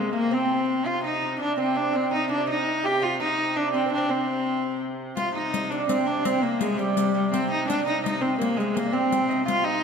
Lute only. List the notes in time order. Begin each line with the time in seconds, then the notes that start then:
Already playing: G#3
0.13 A#3
0.31 C4
0.86 F4
1.04 D#4
1.22 D#4
1.39 D4
1.58 C4
1.75 D4
1.93 C4
2.11 D#4
2.29 D4
2.40 F4
2.47 D#4
2.84 G4
3.02 F4
3.20 D#4
3.57 D4
3.74 C4
3.86 C4
3.98 C4
4.09 C4
5.18 F4
5.35 D#4
5.53 D#4
5.72 D4
5.89 C4
6.07 D4
6.25 C4
6.43 A#3
6.61 G#3
6.78 G3
7.15 G3
7.33 C4
7.67 D4
7.86 D#4
8.04 D#4
8.21 C4
8.38 A#3
8.57 G#3
8.74 A#3
8.86 D4
8.93 C4
9.29 D#4
9.46 F4
9.65 D#4